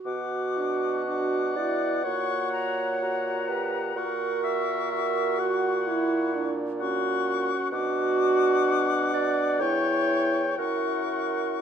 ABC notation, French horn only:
X:1
M:4/4
L:1/8
Q:1/4=63
K:Bm
V:1 name="French horn"
F D D E F2 F G | F2 F2 E D C2 | D4 E2 E2 |]